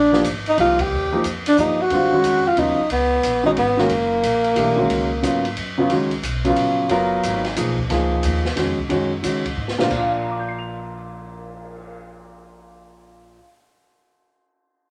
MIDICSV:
0, 0, Header, 1, 7, 480
1, 0, Start_track
1, 0, Tempo, 333333
1, 1315, Time_signature, 3, 2, 24, 8
1, 21456, End_track
2, 0, Start_track
2, 0, Title_t, "Tenor saxophone"
2, 0, Program_c, 0, 66
2, 0, Note_on_c, 0, 62, 89
2, 373, Note_off_c, 0, 62, 0
2, 698, Note_on_c, 0, 63, 98
2, 840, Note_off_c, 0, 63, 0
2, 867, Note_on_c, 0, 65, 98
2, 1166, Note_on_c, 0, 67, 95
2, 1188, Note_off_c, 0, 65, 0
2, 1803, Note_off_c, 0, 67, 0
2, 2130, Note_on_c, 0, 62, 94
2, 2274, Note_off_c, 0, 62, 0
2, 2294, Note_on_c, 0, 63, 86
2, 2612, Note_on_c, 0, 66, 100
2, 2633, Note_off_c, 0, 63, 0
2, 3561, Note_on_c, 0, 65, 96
2, 3582, Note_off_c, 0, 66, 0
2, 3734, Note_on_c, 0, 63, 85
2, 3756, Note_off_c, 0, 65, 0
2, 4199, Note_off_c, 0, 63, 0
2, 4211, Note_on_c, 0, 59, 83
2, 4933, Note_off_c, 0, 59, 0
2, 4984, Note_on_c, 0, 63, 82
2, 5058, Note_off_c, 0, 63, 0
2, 5162, Note_on_c, 0, 59, 85
2, 5479, Note_on_c, 0, 58, 84
2, 5501, Note_off_c, 0, 59, 0
2, 8031, Note_off_c, 0, 58, 0
2, 21456, End_track
3, 0, Start_track
3, 0, Title_t, "Grand piano"
3, 0, Program_c, 1, 0
3, 170, Note_on_c, 1, 53, 70
3, 178, Note_on_c, 1, 58, 64
3, 187, Note_on_c, 1, 63, 61
3, 201, Note_on_c, 1, 67, 76
3, 331, Note_off_c, 1, 53, 0
3, 335, Note_off_c, 1, 58, 0
3, 340, Note_off_c, 1, 63, 0
3, 347, Note_off_c, 1, 67, 0
3, 822, Note_on_c, 1, 53, 60
3, 833, Note_on_c, 1, 58, 50
3, 842, Note_on_c, 1, 63, 58
3, 852, Note_on_c, 1, 67, 68
3, 1108, Note_off_c, 1, 53, 0
3, 1113, Note_off_c, 1, 58, 0
3, 1118, Note_off_c, 1, 63, 0
3, 1123, Note_off_c, 1, 67, 0
3, 1619, Note_on_c, 1, 53, 73
3, 1628, Note_on_c, 1, 58, 67
3, 1631, Note_on_c, 1, 63, 68
3, 1641, Note_on_c, 1, 67, 79
3, 1773, Note_off_c, 1, 53, 0
3, 1778, Note_off_c, 1, 58, 0
3, 1780, Note_off_c, 1, 63, 0
3, 1785, Note_off_c, 1, 67, 0
3, 2270, Note_on_c, 1, 53, 56
3, 2279, Note_on_c, 1, 58, 51
3, 2286, Note_on_c, 1, 63, 57
3, 2300, Note_on_c, 1, 67, 61
3, 2550, Note_off_c, 1, 53, 0
3, 2554, Note_off_c, 1, 58, 0
3, 2557, Note_off_c, 1, 63, 0
3, 2564, Note_off_c, 1, 67, 0
3, 2748, Note_on_c, 1, 50, 63
3, 2763, Note_on_c, 1, 55, 68
3, 2774, Note_on_c, 1, 60, 66
3, 2780, Note_on_c, 1, 65, 73
3, 3028, Note_off_c, 1, 50, 0
3, 3035, Note_off_c, 1, 55, 0
3, 3041, Note_off_c, 1, 60, 0
3, 3044, Note_off_c, 1, 65, 0
3, 3055, Note_on_c, 1, 51, 66
3, 3070, Note_on_c, 1, 56, 63
3, 3075, Note_on_c, 1, 61, 65
3, 3083, Note_on_c, 1, 66, 80
3, 3474, Note_off_c, 1, 51, 0
3, 3481, Note_off_c, 1, 56, 0
3, 3484, Note_off_c, 1, 61, 0
3, 3488, Note_off_c, 1, 66, 0
3, 3699, Note_on_c, 1, 49, 57
3, 3701, Note_on_c, 1, 54, 52
3, 3717, Note_on_c, 1, 59, 56
3, 3720, Note_on_c, 1, 65, 67
3, 3982, Note_off_c, 1, 49, 0
3, 3983, Note_off_c, 1, 54, 0
3, 3991, Note_off_c, 1, 59, 0
3, 3993, Note_off_c, 1, 65, 0
3, 4946, Note_on_c, 1, 51, 70
3, 4962, Note_on_c, 1, 56, 54
3, 4974, Note_on_c, 1, 61, 64
3, 4984, Note_on_c, 1, 66, 78
3, 5112, Note_off_c, 1, 51, 0
3, 5120, Note_off_c, 1, 56, 0
3, 5126, Note_off_c, 1, 61, 0
3, 5131, Note_off_c, 1, 66, 0
3, 5431, Note_on_c, 1, 51, 79
3, 5440, Note_on_c, 1, 56, 61
3, 5452, Note_on_c, 1, 61, 65
3, 5461, Note_on_c, 1, 66, 87
3, 5594, Note_off_c, 1, 51, 0
3, 5599, Note_off_c, 1, 56, 0
3, 5604, Note_off_c, 1, 61, 0
3, 5609, Note_off_c, 1, 66, 0
3, 6557, Note_on_c, 1, 52, 54
3, 6566, Note_on_c, 1, 57, 54
3, 6573, Note_on_c, 1, 62, 53
3, 6582, Note_on_c, 1, 67, 72
3, 6848, Note_off_c, 1, 52, 0
3, 6852, Note_off_c, 1, 57, 0
3, 6856, Note_off_c, 1, 62, 0
3, 6858, Note_on_c, 1, 51, 62
3, 6860, Note_off_c, 1, 67, 0
3, 6865, Note_on_c, 1, 56, 64
3, 6883, Note_on_c, 1, 61, 57
3, 6888, Note_on_c, 1, 66, 73
3, 7292, Note_off_c, 1, 51, 0
3, 7295, Note_off_c, 1, 56, 0
3, 7304, Note_off_c, 1, 61, 0
3, 7307, Note_off_c, 1, 66, 0
3, 7515, Note_on_c, 1, 49, 55
3, 7527, Note_on_c, 1, 54, 53
3, 7540, Note_on_c, 1, 59, 49
3, 7543, Note_on_c, 1, 65, 60
3, 7806, Note_off_c, 1, 49, 0
3, 7812, Note_off_c, 1, 54, 0
3, 7819, Note_off_c, 1, 59, 0
3, 7820, Note_off_c, 1, 65, 0
3, 8318, Note_on_c, 1, 49, 74
3, 8328, Note_on_c, 1, 54, 62
3, 8334, Note_on_c, 1, 59, 65
3, 8350, Note_on_c, 1, 65, 72
3, 8475, Note_off_c, 1, 49, 0
3, 8480, Note_off_c, 1, 54, 0
3, 8484, Note_off_c, 1, 59, 0
3, 8492, Note_off_c, 1, 65, 0
3, 8493, Note_on_c, 1, 51, 67
3, 8501, Note_on_c, 1, 56, 61
3, 8509, Note_on_c, 1, 61, 60
3, 8520, Note_on_c, 1, 66, 69
3, 8775, Note_off_c, 1, 51, 0
3, 8779, Note_off_c, 1, 56, 0
3, 8783, Note_off_c, 1, 61, 0
3, 8788, Note_off_c, 1, 66, 0
3, 9280, Note_on_c, 1, 49, 72
3, 9288, Note_on_c, 1, 54, 67
3, 9296, Note_on_c, 1, 59, 61
3, 9309, Note_on_c, 1, 65, 83
3, 9899, Note_off_c, 1, 49, 0
3, 9904, Note_off_c, 1, 54, 0
3, 9908, Note_off_c, 1, 59, 0
3, 9914, Note_off_c, 1, 65, 0
3, 9929, Note_on_c, 1, 54, 80
3, 9938, Note_on_c, 1, 59, 73
3, 9947, Note_on_c, 1, 65, 73
3, 9959, Note_on_c, 1, 70, 89
3, 10662, Note_off_c, 1, 54, 0
3, 10667, Note_off_c, 1, 59, 0
3, 10672, Note_off_c, 1, 65, 0
3, 10677, Note_off_c, 1, 70, 0
3, 10887, Note_on_c, 1, 53, 58
3, 10901, Note_on_c, 1, 58, 48
3, 10910, Note_on_c, 1, 63, 53
3, 10920, Note_on_c, 1, 68, 53
3, 11173, Note_off_c, 1, 53, 0
3, 11179, Note_off_c, 1, 58, 0
3, 11184, Note_off_c, 1, 63, 0
3, 11189, Note_off_c, 1, 68, 0
3, 11371, Note_on_c, 1, 53, 67
3, 11383, Note_on_c, 1, 58, 53
3, 11392, Note_on_c, 1, 63, 54
3, 11406, Note_on_c, 1, 68, 71
3, 12104, Note_off_c, 1, 53, 0
3, 12111, Note_off_c, 1, 58, 0
3, 12115, Note_off_c, 1, 63, 0
3, 12122, Note_off_c, 1, 68, 0
3, 12325, Note_on_c, 1, 51, 54
3, 12339, Note_on_c, 1, 56, 53
3, 12350, Note_on_c, 1, 61, 47
3, 12356, Note_on_c, 1, 66, 59
3, 12613, Note_off_c, 1, 51, 0
3, 12620, Note_off_c, 1, 56, 0
3, 12625, Note_off_c, 1, 61, 0
3, 12628, Note_off_c, 1, 66, 0
3, 12805, Note_on_c, 1, 51, 62
3, 12810, Note_on_c, 1, 56, 62
3, 12821, Note_on_c, 1, 61, 53
3, 12831, Note_on_c, 1, 66, 74
3, 13093, Note_off_c, 1, 51, 0
3, 13096, Note_off_c, 1, 56, 0
3, 13102, Note_off_c, 1, 61, 0
3, 13106, Note_off_c, 1, 66, 0
3, 13284, Note_on_c, 1, 51, 51
3, 13292, Note_on_c, 1, 56, 50
3, 13303, Note_on_c, 1, 61, 47
3, 13310, Note_on_c, 1, 66, 53
3, 13574, Note_off_c, 1, 51, 0
3, 13578, Note_off_c, 1, 56, 0
3, 13583, Note_off_c, 1, 61, 0
3, 13587, Note_off_c, 1, 66, 0
3, 14087, Note_on_c, 1, 50, 59
3, 14088, Note_on_c, 1, 46, 68
3, 14095, Note_on_c, 1, 55, 55
3, 14108, Note_on_c, 1, 60, 54
3, 14114, Note_on_c, 1, 65, 71
3, 14176, Note_on_c, 1, 58, 63
3, 14244, Note_off_c, 1, 50, 0
3, 14248, Note_off_c, 1, 55, 0
3, 14254, Note_off_c, 1, 60, 0
3, 14257, Note_off_c, 1, 65, 0
3, 14264, Note_on_c, 1, 62, 57
3, 14359, Note_on_c, 1, 65, 59
3, 14447, Note_on_c, 1, 77, 70
3, 14745, Note_on_c, 1, 82, 35
3, 14849, Note_on_c, 1, 86, 40
3, 14967, Note_on_c, 1, 91, 34
3, 15100, Note_on_c, 1, 96, 36
3, 15243, Note_on_c, 1, 101, 34
3, 19223, Note_off_c, 1, 46, 0
3, 19254, Note_off_c, 1, 82, 0
3, 19268, Note_off_c, 1, 58, 0
3, 19306, Note_off_c, 1, 86, 0
3, 19311, Note_off_c, 1, 62, 0
3, 19359, Note_off_c, 1, 65, 0
3, 19365, Note_off_c, 1, 91, 0
3, 19403, Note_off_c, 1, 77, 0
3, 19431, Note_off_c, 1, 96, 0
3, 19503, Note_off_c, 1, 101, 0
3, 21456, End_track
4, 0, Start_track
4, 0, Title_t, "Upright bass"
4, 0, Program_c, 2, 32
4, 0, Note_on_c, 2, 34, 86
4, 339, Note_off_c, 2, 34, 0
4, 353, Note_on_c, 2, 32, 80
4, 819, Note_off_c, 2, 32, 0
4, 832, Note_on_c, 2, 36, 81
4, 1298, Note_off_c, 2, 36, 0
4, 1318, Note_on_c, 2, 39, 83
4, 1780, Note_off_c, 2, 39, 0
4, 1789, Note_on_c, 2, 41, 77
4, 2255, Note_off_c, 2, 41, 0
4, 2270, Note_on_c, 2, 43, 87
4, 2735, Note_off_c, 2, 43, 0
4, 2744, Note_on_c, 2, 42, 76
4, 3211, Note_off_c, 2, 42, 0
4, 3221, Note_on_c, 2, 41, 80
4, 3680, Note_off_c, 2, 41, 0
4, 3689, Note_on_c, 2, 39, 88
4, 3986, Note_off_c, 2, 39, 0
4, 4176, Note_on_c, 2, 37, 86
4, 4645, Note_off_c, 2, 37, 0
4, 4662, Note_on_c, 2, 34, 78
4, 5128, Note_off_c, 2, 34, 0
4, 5136, Note_on_c, 2, 32, 98
4, 5604, Note_off_c, 2, 32, 0
4, 5617, Note_on_c, 2, 30, 85
4, 6084, Note_off_c, 2, 30, 0
4, 6096, Note_on_c, 2, 34, 92
4, 6563, Note_off_c, 2, 34, 0
4, 6575, Note_on_c, 2, 35, 82
4, 7042, Note_off_c, 2, 35, 0
4, 7048, Note_on_c, 2, 37, 84
4, 7519, Note_off_c, 2, 37, 0
4, 7528, Note_on_c, 2, 44, 83
4, 7998, Note_off_c, 2, 44, 0
4, 8017, Note_on_c, 2, 42, 87
4, 8483, Note_off_c, 2, 42, 0
4, 8495, Note_on_c, 2, 37, 80
4, 8958, Note_off_c, 2, 37, 0
4, 8966, Note_on_c, 2, 35, 85
4, 9437, Note_off_c, 2, 35, 0
4, 9449, Note_on_c, 2, 34, 81
4, 9919, Note_off_c, 2, 34, 0
4, 9933, Note_on_c, 2, 30, 79
4, 10401, Note_off_c, 2, 30, 0
4, 10423, Note_on_c, 2, 32, 87
4, 10887, Note_off_c, 2, 32, 0
4, 10908, Note_on_c, 2, 35, 88
4, 11370, Note_off_c, 2, 35, 0
4, 11385, Note_on_c, 2, 37, 89
4, 11848, Note_off_c, 2, 37, 0
4, 11865, Note_on_c, 2, 39, 85
4, 12329, Note_off_c, 2, 39, 0
4, 12342, Note_on_c, 2, 41, 98
4, 12631, Note_off_c, 2, 41, 0
4, 12823, Note_on_c, 2, 42, 80
4, 13289, Note_off_c, 2, 42, 0
4, 13301, Note_on_c, 2, 49, 78
4, 13768, Note_off_c, 2, 49, 0
4, 13776, Note_on_c, 2, 44, 84
4, 14247, Note_off_c, 2, 44, 0
4, 14262, Note_on_c, 2, 34, 90
4, 19253, Note_off_c, 2, 34, 0
4, 21456, End_track
5, 0, Start_track
5, 0, Title_t, "Cymbal swell"
5, 14575, Note_on_c, 9, 59, 44
5, 17049, Note_off_c, 9, 59, 0
5, 21456, End_track
6, 0, Start_track
6, 0, Title_t, "Muted upright bass strokes"
6, 4015, Note_on_c, 9, 29, 41
6, 4159, Note_off_c, 9, 29, 0
6, 12649, Note_on_c, 9, 29, 39
6, 12793, Note_off_c, 9, 29, 0
6, 21456, End_track
7, 0, Start_track
7, 0, Title_t, "Drums"
7, 189, Note_on_c, 9, 38, 62
7, 333, Note_off_c, 9, 38, 0
7, 352, Note_on_c, 9, 44, 53
7, 352, Note_on_c, 9, 51, 70
7, 496, Note_off_c, 9, 44, 0
7, 496, Note_off_c, 9, 51, 0
7, 664, Note_on_c, 9, 51, 47
7, 808, Note_off_c, 9, 51, 0
7, 832, Note_on_c, 9, 51, 58
7, 976, Note_off_c, 9, 51, 0
7, 1137, Note_on_c, 9, 51, 67
7, 1142, Note_on_c, 9, 36, 80
7, 1281, Note_off_c, 9, 51, 0
7, 1286, Note_off_c, 9, 36, 0
7, 1786, Note_on_c, 9, 44, 56
7, 1786, Note_on_c, 9, 51, 64
7, 1930, Note_off_c, 9, 44, 0
7, 1930, Note_off_c, 9, 51, 0
7, 2102, Note_on_c, 9, 51, 70
7, 2246, Note_off_c, 9, 51, 0
7, 2264, Note_on_c, 9, 44, 60
7, 2408, Note_off_c, 9, 44, 0
7, 2739, Note_on_c, 9, 51, 58
7, 2883, Note_off_c, 9, 51, 0
7, 3221, Note_on_c, 9, 44, 59
7, 3221, Note_on_c, 9, 51, 66
7, 3365, Note_off_c, 9, 44, 0
7, 3365, Note_off_c, 9, 51, 0
7, 3699, Note_on_c, 9, 51, 59
7, 3843, Note_off_c, 9, 51, 0
7, 4174, Note_on_c, 9, 51, 62
7, 4318, Note_off_c, 9, 51, 0
7, 4654, Note_on_c, 9, 44, 56
7, 4654, Note_on_c, 9, 51, 69
7, 4798, Note_off_c, 9, 44, 0
7, 4798, Note_off_c, 9, 51, 0
7, 5135, Note_on_c, 9, 51, 56
7, 5279, Note_off_c, 9, 51, 0
7, 5443, Note_on_c, 9, 38, 52
7, 5587, Note_off_c, 9, 38, 0
7, 5609, Note_on_c, 9, 51, 60
7, 5753, Note_off_c, 9, 51, 0
7, 6097, Note_on_c, 9, 44, 48
7, 6097, Note_on_c, 9, 51, 72
7, 6241, Note_off_c, 9, 44, 0
7, 6241, Note_off_c, 9, 51, 0
7, 6397, Note_on_c, 9, 51, 42
7, 6541, Note_off_c, 9, 51, 0
7, 6566, Note_on_c, 9, 51, 64
7, 6710, Note_off_c, 9, 51, 0
7, 7054, Note_on_c, 9, 51, 61
7, 7198, Note_off_c, 9, 51, 0
7, 7536, Note_on_c, 9, 44, 55
7, 7536, Note_on_c, 9, 51, 65
7, 7680, Note_off_c, 9, 44, 0
7, 7680, Note_off_c, 9, 51, 0
7, 7846, Note_on_c, 9, 51, 45
7, 7990, Note_off_c, 9, 51, 0
7, 8016, Note_on_c, 9, 51, 61
7, 8160, Note_off_c, 9, 51, 0
7, 8491, Note_on_c, 9, 51, 59
7, 8635, Note_off_c, 9, 51, 0
7, 8800, Note_on_c, 9, 51, 44
7, 8944, Note_off_c, 9, 51, 0
7, 8975, Note_on_c, 9, 44, 57
7, 8975, Note_on_c, 9, 51, 62
7, 9119, Note_off_c, 9, 44, 0
7, 9119, Note_off_c, 9, 51, 0
7, 9285, Note_on_c, 9, 51, 46
7, 9429, Note_off_c, 9, 51, 0
7, 9451, Note_on_c, 9, 51, 60
7, 9595, Note_off_c, 9, 51, 0
7, 9926, Note_on_c, 9, 51, 59
7, 10070, Note_off_c, 9, 51, 0
7, 10416, Note_on_c, 9, 44, 51
7, 10416, Note_on_c, 9, 51, 66
7, 10560, Note_off_c, 9, 44, 0
7, 10560, Note_off_c, 9, 51, 0
7, 10721, Note_on_c, 9, 51, 43
7, 10725, Note_on_c, 9, 38, 33
7, 10865, Note_off_c, 9, 51, 0
7, 10869, Note_off_c, 9, 38, 0
7, 10893, Note_on_c, 9, 44, 56
7, 10893, Note_on_c, 9, 51, 68
7, 11037, Note_off_c, 9, 44, 0
7, 11037, Note_off_c, 9, 51, 0
7, 11207, Note_on_c, 9, 36, 58
7, 11351, Note_off_c, 9, 36, 0
7, 11374, Note_on_c, 9, 51, 58
7, 11379, Note_on_c, 9, 38, 36
7, 11518, Note_off_c, 9, 51, 0
7, 11523, Note_off_c, 9, 38, 0
7, 11689, Note_on_c, 9, 36, 52
7, 11833, Note_off_c, 9, 36, 0
7, 11850, Note_on_c, 9, 44, 51
7, 11850, Note_on_c, 9, 51, 63
7, 11994, Note_off_c, 9, 44, 0
7, 11994, Note_off_c, 9, 51, 0
7, 12166, Note_on_c, 9, 38, 52
7, 12310, Note_off_c, 9, 38, 0
7, 12336, Note_on_c, 9, 51, 63
7, 12340, Note_on_c, 9, 38, 38
7, 12480, Note_off_c, 9, 51, 0
7, 12484, Note_off_c, 9, 38, 0
7, 12649, Note_on_c, 9, 36, 51
7, 12793, Note_off_c, 9, 36, 0
7, 12813, Note_on_c, 9, 51, 55
7, 12957, Note_off_c, 9, 51, 0
7, 13299, Note_on_c, 9, 44, 49
7, 13299, Note_on_c, 9, 51, 64
7, 13443, Note_off_c, 9, 44, 0
7, 13443, Note_off_c, 9, 51, 0
7, 13613, Note_on_c, 9, 36, 49
7, 13616, Note_on_c, 9, 51, 45
7, 13757, Note_off_c, 9, 36, 0
7, 13760, Note_off_c, 9, 51, 0
7, 13938, Note_on_c, 9, 38, 52
7, 14082, Note_off_c, 9, 38, 0
7, 14100, Note_on_c, 9, 38, 70
7, 14244, Note_off_c, 9, 38, 0
7, 14262, Note_on_c, 9, 36, 51
7, 14264, Note_on_c, 9, 49, 56
7, 14406, Note_off_c, 9, 36, 0
7, 14408, Note_off_c, 9, 49, 0
7, 21456, End_track
0, 0, End_of_file